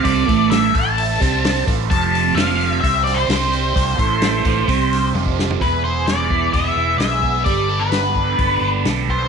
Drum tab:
HH |o-o-o-o-o-o-o-o-|o-o-o-o-o-o-o-o-|o-o-o-o-o-o-----|o---o---o---o---|
SD |----o-----o-o---|----o-----o-o---|----o-----o---o-|----o-------o---|
T1 |----------------|----------------|------------o---|----------------|
FT |----------------|----------------|---------------o|----------------|
BD |o-o---o---o---o-|o-------o-------|o-o---o-o----o--|o-----o-o-----o-|

HH |o---o---o---o---|
SD |----o-------o---|
T1 |----------------|
FT |----------------|
BD |o-----o-o-----o-|